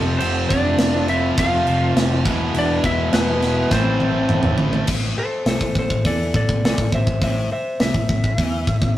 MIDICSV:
0, 0, Header, 1, 11, 480
1, 0, Start_track
1, 0, Key_signature, 0, "minor"
1, 0, Tempo, 583658
1, 174, Time_signature, 4, 2, 24, 8
1, 7384, End_track
2, 0, Start_track
2, 0, Title_t, "Lead electric guitar"
2, 0, Program_c, 0, 29
2, 154, Note_on_c, 0, 72, 88
2, 403, Note_on_c, 0, 74, 91
2, 411, Note_off_c, 0, 72, 0
2, 896, Note_off_c, 0, 74, 0
2, 899, Note_on_c, 0, 76, 82
2, 1119, Note_off_c, 0, 76, 0
2, 1143, Note_on_c, 0, 77, 84
2, 1585, Note_off_c, 0, 77, 0
2, 2126, Note_on_c, 0, 74, 101
2, 2345, Note_off_c, 0, 74, 0
2, 2349, Note_on_c, 0, 76, 101
2, 2564, Note_off_c, 0, 76, 0
2, 2582, Note_on_c, 0, 71, 91
2, 3061, Note_off_c, 0, 71, 0
2, 3064, Note_on_c, 0, 72, 80
2, 3744, Note_off_c, 0, 72, 0
2, 4260, Note_on_c, 0, 69, 76
2, 4266, Note_on_c, 0, 72, 86
2, 4491, Note_off_c, 0, 72, 0
2, 4495, Note_off_c, 0, 69, 0
2, 4503, Note_on_c, 0, 69, 73
2, 4511, Note_on_c, 0, 72, 83
2, 4720, Note_off_c, 0, 69, 0
2, 4733, Note_off_c, 0, 72, 0
2, 4758, Note_on_c, 0, 69, 61
2, 4764, Note_on_c, 0, 72, 68
2, 4968, Note_off_c, 0, 69, 0
2, 4979, Note_off_c, 0, 72, 0
2, 4986, Note_on_c, 0, 69, 71
2, 4992, Note_on_c, 0, 74, 81
2, 5202, Note_off_c, 0, 69, 0
2, 5214, Note_off_c, 0, 74, 0
2, 5225, Note_on_c, 0, 69, 69
2, 5233, Note_on_c, 0, 74, 76
2, 5441, Note_off_c, 0, 69, 0
2, 5454, Note_off_c, 0, 74, 0
2, 5468, Note_on_c, 0, 69, 72
2, 5478, Note_on_c, 0, 74, 82
2, 5683, Note_off_c, 0, 69, 0
2, 5697, Note_off_c, 0, 74, 0
2, 5708, Note_on_c, 0, 72, 67
2, 5715, Note_on_c, 0, 76, 78
2, 5923, Note_off_c, 0, 72, 0
2, 5936, Note_off_c, 0, 76, 0
2, 5937, Note_on_c, 0, 72, 66
2, 5951, Note_on_c, 0, 76, 80
2, 6157, Note_off_c, 0, 72, 0
2, 6174, Note_off_c, 0, 76, 0
2, 6185, Note_on_c, 0, 72, 64
2, 6190, Note_on_c, 0, 76, 71
2, 6402, Note_off_c, 0, 72, 0
2, 6412, Note_off_c, 0, 76, 0
2, 6425, Note_on_c, 0, 76, 94
2, 7384, Note_off_c, 0, 76, 0
2, 7384, End_track
3, 0, Start_track
3, 0, Title_t, "Tonewheel organ"
3, 0, Program_c, 1, 16
3, 0, Note_on_c, 1, 65, 73
3, 0, Note_on_c, 1, 72, 61
3, 0, Note_on_c, 1, 81, 76
3, 1833, Note_off_c, 1, 65, 0
3, 1836, Note_off_c, 1, 81, 0
3, 1837, Note_off_c, 1, 72, 0
3, 1849, Note_on_c, 1, 71, 62
3, 1851, Note_on_c, 1, 80, 70
3, 1853, Note_on_c, 1, 64, 68
3, 3037, Note_off_c, 1, 71, 0
3, 3038, Note_off_c, 1, 80, 0
3, 3062, Note_on_c, 1, 81, 89
3, 3065, Note_on_c, 1, 72, 69
3, 3989, Note_off_c, 1, 64, 0
3, 4006, Note_off_c, 1, 81, 0
3, 4008, Note_off_c, 1, 72, 0
3, 7384, End_track
4, 0, Start_track
4, 0, Title_t, "Lead electric guitar"
4, 0, Program_c, 2, 29
4, 161, Note_on_c, 2, 60, 74
4, 390, Note_off_c, 2, 60, 0
4, 403, Note_on_c, 2, 62, 74
4, 855, Note_off_c, 2, 62, 0
4, 891, Note_on_c, 2, 64, 75
4, 1115, Note_off_c, 2, 64, 0
4, 1151, Note_on_c, 2, 65, 70
4, 1589, Note_off_c, 2, 65, 0
4, 2121, Note_on_c, 2, 62, 82
4, 2330, Note_off_c, 2, 62, 0
4, 2334, Note_on_c, 2, 64, 82
4, 2556, Note_off_c, 2, 64, 0
4, 2569, Note_on_c, 2, 59, 70
4, 3016, Note_off_c, 2, 59, 0
4, 3060, Note_on_c, 2, 60, 70
4, 3742, Note_off_c, 2, 60, 0
4, 7384, End_track
5, 0, Start_track
5, 0, Title_t, "Overdriven electric guitar"
5, 0, Program_c, 3, 29
5, 0, Note_on_c, 3, 53, 96
5, 0, Note_on_c, 3, 57, 90
5, 0, Note_on_c, 3, 60, 95
5, 0, Note_on_c, 3, 65, 102
5, 879, Note_off_c, 3, 53, 0
5, 881, Note_off_c, 3, 65, 0
5, 884, Note_off_c, 3, 57, 0
5, 887, Note_off_c, 3, 60, 0
5, 891, Note_on_c, 3, 65, 87
5, 900, Note_on_c, 3, 60, 84
5, 907, Note_on_c, 3, 57, 77
5, 918, Note_on_c, 3, 53, 69
5, 1837, Note_off_c, 3, 65, 0
5, 1840, Note_off_c, 3, 53, 0
5, 1841, Note_off_c, 3, 60, 0
5, 1844, Note_off_c, 3, 57, 0
5, 1844, Note_on_c, 3, 52, 95
5, 1851, Note_on_c, 3, 56, 92
5, 1862, Note_on_c, 3, 59, 92
5, 1870, Note_on_c, 3, 64, 99
5, 2792, Note_off_c, 3, 52, 0
5, 2793, Note_off_c, 3, 64, 0
5, 2796, Note_off_c, 3, 56, 0
5, 2801, Note_off_c, 3, 59, 0
5, 2803, Note_on_c, 3, 64, 96
5, 2818, Note_on_c, 3, 59, 91
5, 2822, Note_on_c, 3, 56, 85
5, 2829, Note_on_c, 3, 52, 67
5, 3032, Note_off_c, 3, 64, 0
5, 3036, Note_off_c, 3, 52, 0
5, 3036, Note_on_c, 3, 45, 83
5, 3040, Note_off_c, 3, 59, 0
5, 3042, Note_off_c, 3, 56, 0
5, 3046, Note_on_c, 3, 52, 97
5, 3050, Note_on_c, 3, 57, 95
5, 3058, Note_on_c, 3, 60, 93
5, 3063, Note_on_c, 3, 64, 101
5, 3988, Note_off_c, 3, 45, 0
5, 3993, Note_off_c, 3, 52, 0
5, 3995, Note_off_c, 3, 57, 0
5, 3999, Note_off_c, 3, 60, 0
5, 4001, Note_off_c, 3, 64, 0
5, 7384, End_track
6, 0, Start_track
6, 0, Title_t, "Distorted electric guitar"
6, 0, Program_c, 4, 30
6, 1123, Note_on_c, 4, 41, 80
6, 1137, Note_on_c, 4, 48, 84
6, 1154, Note_on_c, 4, 53, 92
6, 1353, Note_off_c, 4, 41, 0
6, 1358, Note_off_c, 4, 53, 0
6, 1360, Note_off_c, 4, 48, 0
6, 1368, Note_on_c, 4, 53, 96
6, 1381, Note_on_c, 4, 48, 74
6, 1396, Note_on_c, 4, 41, 69
6, 1835, Note_off_c, 4, 53, 0
6, 1840, Note_off_c, 4, 41, 0
6, 1842, Note_off_c, 4, 48, 0
6, 7384, End_track
7, 0, Start_track
7, 0, Title_t, "Distorted electric guitar"
7, 0, Program_c, 5, 30
7, 0, Note_on_c, 5, 41, 95
7, 0, Note_on_c, 5, 48, 108
7, 0, Note_on_c, 5, 53, 99
7, 636, Note_off_c, 5, 41, 0
7, 643, Note_off_c, 5, 48, 0
7, 647, Note_off_c, 5, 53, 0
7, 654, Note_on_c, 5, 41, 74
7, 661, Note_on_c, 5, 48, 89
7, 672, Note_on_c, 5, 53, 99
7, 1838, Note_off_c, 5, 41, 0
7, 1841, Note_off_c, 5, 48, 0
7, 1847, Note_off_c, 5, 53, 0
7, 1848, Note_on_c, 5, 40, 99
7, 1853, Note_on_c, 5, 47, 114
7, 1863, Note_on_c, 5, 52, 112
7, 2554, Note_off_c, 5, 40, 0
7, 2557, Note_off_c, 5, 47, 0
7, 2562, Note_off_c, 5, 52, 0
7, 2574, Note_on_c, 5, 40, 81
7, 2582, Note_on_c, 5, 47, 87
7, 2595, Note_on_c, 5, 52, 83
7, 3037, Note_off_c, 5, 40, 0
7, 3042, Note_off_c, 5, 47, 0
7, 3048, Note_off_c, 5, 52, 0
7, 3058, Note_on_c, 5, 45, 99
7, 3072, Note_on_c, 5, 52, 102
7, 3078, Note_on_c, 5, 57, 106
7, 3760, Note_off_c, 5, 45, 0
7, 3763, Note_off_c, 5, 57, 0
7, 3766, Note_off_c, 5, 52, 0
7, 3773, Note_on_c, 5, 57, 106
7, 3789, Note_on_c, 5, 52, 86
7, 3795, Note_on_c, 5, 45, 73
7, 3997, Note_off_c, 5, 57, 0
7, 4005, Note_off_c, 5, 52, 0
7, 4008, Note_off_c, 5, 45, 0
7, 4020, Note_on_c, 5, 45, 100
7, 4248, Note_off_c, 5, 45, 0
7, 4503, Note_on_c, 5, 48, 97
7, 4609, Note_off_c, 5, 48, 0
7, 4624, Note_on_c, 5, 45, 70
7, 4737, Note_off_c, 5, 45, 0
7, 4747, Note_on_c, 5, 45, 67
7, 4852, Note_off_c, 5, 45, 0
7, 4862, Note_on_c, 5, 45, 73
7, 4976, Note_off_c, 5, 45, 0
7, 4980, Note_on_c, 5, 52, 101
7, 5208, Note_off_c, 5, 52, 0
7, 5217, Note_on_c, 5, 45, 59
7, 5333, Note_off_c, 5, 45, 0
7, 5342, Note_on_c, 5, 45, 64
7, 5456, Note_off_c, 5, 45, 0
7, 5473, Note_on_c, 5, 48, 100
7, 5574, Note_off_c, 5, 48, 0
7, 5588, Note_on_c, 5, 45, 70
7, 5693, Note_off_c, 5, 45, 0
7, 5703, Note_on_c, 5, 45, 76
7, 5810, Note_off_c, 5, 45, 0
7, 5820, Note_on_c, 5, 45, 66
7, 5935, Note_off_c, 5, 45, 0
7, 5948, Note_on_c, 5, 45, 100
7, 6172, Note_off_c, 5, 45, 0
7, 6418, Note_on_c, 5, 48, 108
7, 6527, Note_off_c, 5, 48, 0
7, 6541, Note_on_c, 5, 45, 76
7, 6656, Note_off_c, 5, 45, 0
7, 6665, Note_on_c, 5, 45, 73
7, 6778, Note_off_c, 5, 45, 0
7, 6787, Note_on_c, 5, 45, 66
7, 6895, Note_off_c, 5, 45, 0
7, 6898, Note_on_c, 5, 52, 92
7, 7127, Note_off_c, 5, 52, 0
7, 7137, Note_on_c, 5, 45, 63
7, 7254, Note_off_c, 5, 45, 0
7, 7263, Note_on_c, 5, 45, 61
7, 7377, Note_off_c, 5, 45, 0
7, 7384, End_track
8, 0, Start_track
8, 0, Title_t, "Fingered electric bass"
8, 0, Program_c, 6, 33
8, 0, Note_on_c, 6, 29, 101
8, 143, Note_off_c, 6, 29, 0
8, 181, Note_on_c, 6, 29, 90
8, 387, Note_off_c, 6, 29, 0
8, 412, Note_on_c, 6, 29, 83
8, 622, Note_off_c, 6, 29, 0
8, 662, Note_on_c, 6, 29, 85
8, 1077, Note_off_c, 6, 29, 0
8, 1132, Note_on_c, 6, 29, 80
8, 1342, Note_off_c, 6, 29, 0
8, 1381, Note_on_c, 6, 29, 91
8, 1587, Note_off_c, 6, 29, 0
8, 1613, Note_on_c, 6, 29, 84
8, 1855, Note_off_c, 6, 29, 0
8, 1855, Note_on_c, 6, 28, 98
8, 2063, Note_off_c, 6, 28, 0
8, 2093, Note_on_c, 6, 28, 99
8, 2302, Note_off_c, 6, 28, 0
8, 2335, Note_on_c, 6, 28, 82
8, 2543, Note_off_c, 6, 28, 0
8, 2571, Note_on_c, 6, 28, 83
8, 2990, Note_off_c, 6, 28, 0
8, 3053, Note_on_c, 6, 33, 84
8, 3471, Note_off_c, 6, 33, 0
8, 3533, Note_on_c, 6, 33, 84
8, 3741, Note_off_c, 6, 33, 0
8, 3771, Note_on_c, 6, 33, 91
8, 3980, Note_off_c, 6, 33, 0
8, 4010, Note_on_c, 6, 33, 85
8, 4233, Note_off_c, 6, 33, 0
8, 4488, Note_on_c, 6, 36, 83
8, 4600, Note_off_c, 6, 36, 0
8, 4611, Note_on_c, 6, 33, 76
8, 4722, Note_off_c, 6, 33, 0
8, 4732, Note_on_c, 6, 33, 79
8, 4843, Note_off_c, 6, 33, 0
8, 4853, Note_on_c, 6, 33, 73
8, 4963, Note_off_c, 6, 33, 0
8, 4976, Note_on_c, 6, 40, 81
8, 5196, Note_off_c, 6, 40, 0
8, 5216, Note_on_c, 6, 33, 72
8, 5325, Note_off_c, 6, 33, 0
8, 5333, Note_on_c, 6, 33, 77
8, 5443, Note_off_c, 6, 33, 0
8, 5455, Note_on_c, 6, 36, 88
8, 5564, Note_off_c, 6, 36, 0
8, 5580, Note_on_c, 6, 33, 75
8, 5687, Note_off_c, 6, 33, 0
8, 5694, Note_on_c, 6, 33, 80
8, 5804, Note_off_c, 6, 33, 0
8, 5817, Note_on_c, 6, 33, 85
8, 5925, Note_off_c, 6, 33, 0
8, 5936, Note_on_c, 6, 33, 88
8, 6156, Note_off_c, 6, 33, 0
8, 6414, Note_on_c, 6, 36, 82
8, 6524, Note_off_c, 6, 36, 0
8, 6534, Note_on_c, 6, 33, 75
8, 6644, Note_off_c, 6, 33, 0
8, 6655, Note_on_c, 6, 33, 78
8, 6764, Note_off_c, 6, 33, 0
8, 6776, Note_on_c, 6, 33, 80
8, 6885, Note_off_c, 6, 33, 0
8, 6895, Note_on_c, 6, 40, 86
8, 7116, Note_off_c, 6, 40, 0
8, 7134, Note_on_c, 6, 33, 73
8, 7244, Note_off_c, 6, 33, 0
8, 7253, Note_on_c, 6, 33, 68
8, 7364, Note_off_c, 6, 33, 0
8, 7384, End_track
9, 0, Start_track
9, 0, Title_t, "Muted distorted electric guitar strokes"
9, 4260, Note_on_c, 9, 29, 52
9, 4342, Note_off_c, 9, 29, 0
9, 6182, Note_on_c, 9, 29, 52
9, 6265, Note_off_c, 9, 29, 0
9, 7384, End_track
10, 0, Start_track
10, 0, Title_t, "Muted fingered electric bass strokes"
10, 4248, Note_on_c, 9, 29, 38
10, 4331, Note_off_c, 9, 29, 0
10, 6177, Note_on_c, 9, 29, 41
10, 6259, Note_off_c, 9, 29, 0
10, 7384, End_track
11, 0, Start_track
11, 0, Title_t, "Drums"
11, 168, Note_on_c, 9, 49, 89
11, 250, Note_off_c, 9, 49, 0
11, 412, Note_on_c, 9, 49, 65
11, 415, Note_on_c, 9, 36, 74
11, 494, Note_off_c, 9, 49, 0
11, 497, Note_off_c, 9, 36, 0
11, 644, Note_on_c, 9, 49, 85
11, 646, Note_on_c, 9, 38, 108
11, 726, Note_off_c, 9, 49, 0
11, 728, Note_off_c, 9, 38, 0
11, 890, Note_on_c, 9, 49, 66
11, 972, Note_off_c, 9, 49, 0
11, 1131, Note_on_c, 9, 49, 79
11, 1133, Note_on_c, 9, 36, 115
11, 1213, Note_off_c, 9, 49, 0
11, 1215, Note_off_c, 9, 36, 0
11, 1370, Note_on_c, 9, 49, 61
11, 1453, Note_off_c, 9, 49, 0
11, 1616, Note_on_c, 9, 49, 83
11, 1618, Note_on_c, 9, 38, 125
11, 1699, Note_off_c, 9, 49, 0
11, 1700, Note_off_c, 9, 38, 0
11, 1852, Note_on_c, 9, 49, 61
11, 1854, Note_on_c, 9, 36, 102
11, 1935, Note_off_c, 9, 49, 0
11, 1936, Note_off_c, 9, 36, 0
11, 2092, Note_on_c, 9, 49, 79
11, 2175, Note_off_c, 9, 49, 0
11, 2332, Note_on_c, 9, 49, 58
11, 2334, Note_on_c, 9, 36, 78
11, 2414, Note_off_c, 9, 49, 0
11, 2417, Note_off_c, 9, 36, 0
11, 2572, Note_on_c, 9, 49, 84
11, 2573, Note_on_c, 9, 38, 118
11, 2654, Note_off_c, 9, 49, 0
11, 2656, Note_off_c, 9, 38, 0
11, 2815, Note_on_c, 9, 49, 60
11, 2817, Note_on_c, 9, 38, 33
11, 2897, Note_off_c, 9, 49, 0
11, 2899, Note_off_c, 9, 38, 0
11, 3050, Note_on_c, 9, 38, 62
11, 3054, Note_on_c, 9, 36, 107
11, 3133, Note_off_c, 9, 38, 0
11, 3136, Note_off_c, 9, 36, 0
11, 3292, Note_on_c, 9, 48, 77
11, 3374, Note_off_c, 9, 48, 0
11, 3527, Note_on_c, 9, 47, 85
11, 3609, Note_off_c, 9, 47, 0
11, 3641, Note_on_c, 9, 45, 89
11, 3723, Note_off_c, 9, 45, 0
11, 3764, Note_on_c, 9, 43, 102
11, 3846, Note_off_c, 9, 43, 0
11, 3889, Note_on_c, 9, 43, 94
11, 3971, Note_off_c, 9, 43, 0
11, 4006, Note_on_c, 9, 57, 111
11, 4013, Note_on_c, 9, 36, 105
11, 4089, Note_off_c, 9, 57, 0
11, 4095, Note_off_c, 9, 36, 0
11, 4490, Note_on_c, 9, 46, 54
11, 4492, Note_on_c, 9, 38, 98
11, 4573, Note_off_c, 9, 46, 0
11, 4574, Note_off_c, 9, 38, 0
11, 4612, Note_on_c, 9, 36, 88
11, 4694, Note_off_c, 9, 36, 0
11, 4732, Note_on_c, 9, 36, 73
11, 4814, Note_off_c, 9, 36, 0
11, 4854, Note_on_c, 9, 36, 80
11, 4936, Note_off_c, 9, 36, 0
11, 4975, Note_on_c, 9, 36, 79
11, 4980, Note_on_c, 9, 46, 54
11, 5057, Note_off_c, 9, 36, 0
11, 5063, Note_off_c, 9, 46, 0
11, 5216, Note_on_c, 9, 36, 89
11, 5298, Note_off_c, 9, 36, 0
11, 5336, Note_on_c, 9, 36, 83
11, 5418, Note_off_c, 9, 36, 0
11, 5469, Note_on_c, 9, 46, 52
11, 5471, Note_on_c, 9, 38, 107
11, 5551, Note_off_c, 9, 46, 0
11, 5553, Note_off_c, 9, 38, 0
11, 5576, Note_on_c, 9, 36, 95
11, 5659, Note_off_c, 9, 36, 0
11, 5694, Note_on_c, 9, 36, 78
11, 5777, Note_off_c, 9, 36, 0
11, 5814, Note_on_c, 9, 36, 77
11, 5896, Note_off_c, 9, 36, 0
11, 5935, Note_on_c, 9, 36, 91
11, 5940, Note_on_c, 9, 46, 51
11, 6017, Note_off_c, 9, 36, 0
11, 6022, Note_off_c, 9, 46, 0
11, 6414, Note_on_c, 9, 46, 53
11, 6416, Note_on_c, 9, 38, 104
11, 6496, Note_off_c, 9, 46, 0
11, 6498, Note_off_c, 9, 38, 0
11, 6533, Note_on_c, 9, 36, 90
11, 6615, Note_off_c, 9, 36, 0
11, 6655, Note_on_c, 9, 36, 77
11, 6737, Note_off_c, 9, 36, 0
11, 6775, Note_on_c, 9, 36, 77
11, 6857, Note_off_c, 9, 36, 0
11, 6894, Note_on_c, 9, 36, 90
11, 6898, Note_on_c, 9, 46, 52
11, 6976, Note_off_c, 9, 36, 0
11, 6980, Note_off_c, 9, 46, 0
11, 7133, Note_on_c, 9, 36, 89
11, 7215, Note_off_c, 9, 36, 0
11, 7251, Note_on_c, 9, 36, 83
11, 7333, Note_off_c, 9, 36, 0
11, 7384, End_track
0, 0, End_of_file